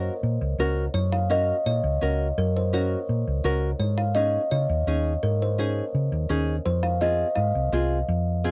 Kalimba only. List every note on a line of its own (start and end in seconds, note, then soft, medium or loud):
0.00 0.56 C#5 medium
0.94 1.02 C#5 medium
1.12 1.21 F5 loud
1.31 1.67 D#5 medium
1.66 2.40 C#5 medium
2.38 2.54 A#4 medium
2.56 2.64 C5 medium
2.74 3.41 C#5 medium
3.80 3.97 C#5 medium
3.98 4.06 F5 medium
4.15 4.52 D#5 medium
4.51 5.19 C#5 loud
5.23 5.40 A#4 medium
5.42 5.60 C5 medium
5.60 6.27 C#5 medium
6.66 6.74 C5 medium
6.83 7.02 F5 loud
7.01 7.35 D#5 medium
7.36 8.51 F5 loud